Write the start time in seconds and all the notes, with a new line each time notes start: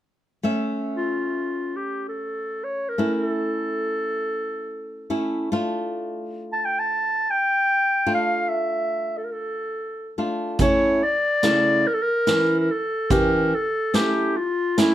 0.43 A3 C#4 E5
0.97 F4
1.77 G4
2.08 A4
2.64 C#5
2.89 A#4
2.98 A3 C#4 E4
3.14 A#4
3.25 A4
5.10 A3 C#4 E4
5.52 A3 D4 F4
6.53 A5
6.65 G5
6.79 A5
7.31 G5
8.06 A3 D4 F4
8.14 F5
8.49 E5
9.17 A4
9.24 A#4
9.32 A4
10.18 A3 D4 F4
10.59 A3 C#4 E4 C#5, kick, closed hi-hat
11.03 D5
11.43 C#3 A3 E4, snare, closed hi-hat
11.87 A#4
11.94 A4
12.02 A#4
12.27 E3 C#4 E4, snare, closed hi-hat
12.60 A#4
12.71 A4
13.10 E3 C#4 G4 A#4, kick, closed hi-hat
13.55 A4
13.94 A3 C#4 E4 G4, snare, closed hi-hat
14.37 F4
14.78 A3 C#4 E4, snare, closed hi-hat